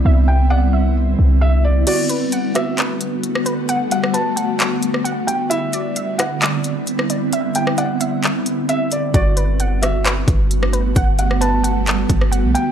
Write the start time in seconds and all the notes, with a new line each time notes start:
Already playing: D3 G3 B3 C4 E4 D5
0.05 C2 E5
0.28 G5
0.50 D5 F#5
0.73 E5
1.19 C2
1.41 E5
1.65 D5
1.87 D3 G3 A3 B3 F#4 D5, closed hi-hat, crash
2.09 B4, closed hi-hat
2.32 F#5, closed hi-hat
2.55 F#4 E5, cross-stick, closed hi-hat
2.78 B4, clap, closed hi-hat
3.01 closed hi-hat
3.23 closed hi-hat
3.35 cross-stick
3.46 B4, closed hi-hat
3.69 F#5, closed hi-hat
3.91 F#5, closed hi-hat
4.04 cross-stick
4.14 B4 A5, closed hi-hat
4.36 F#5, closed hi-hat
4.60 clap, closed hi-hat
4.83 closed hi-hat
4.94 cross-stick
5.04 F#5, closed hi-hat
5.27 G5, closed hi-hat
5.50 B3 C4 E4 E5, closed hi-hat
5.73 D5, closed hi-hat
5.96 E5, closed hi-hat
6.19 E4 F#5, cross-stick, closed hi-hat
6.42 D5, clap, closed hi-hat
6.64 closed hi-hat
6.87 closed hi-hat
6.99 cross-stick
7.10 D5, closed hi-hat
7.33 E5, closed hi-hat
7.55 G5, closed hi-hat
7.67 cross-stick
7.78 D5 F#5, closed hi-hat
8.01 E5, closed hi-hat
8.23 clap, closed hi-hat
8.46 closed hi-hat
8.69 E5, closed hi-hat
8.92 D5, closed hi-hat
9.14 G1 G3 A3 B3 F#4 D5, kick, closed hi-hat
9.37 B4, closed hi-hat
9.60 F#5, closed hi-hat
9.82 F#4 E5, cross-stick, closed hi-hat
10.05 B4, clap, closed hi-hat
10.28 G1, kick, closed hi-hat
10.51 closed hi-hat
10.63 cross-stick
10.73 B4, closed hi-hat
10.96 G1 F#5, kick, closed hi-hat
11.19 F#5, closed hi-hat
11.31 cross-stick
11.41 B4 A5, closed hi-hat
11.64 F#5, closed hi-hat
11.87 clap, closed hi-hat
12.10 G1, kick, closed hi-hat
12.21 cross-stick
12.32 F#5, closed hi-hat
12.44 B1
12.55 G5, closed hi-hat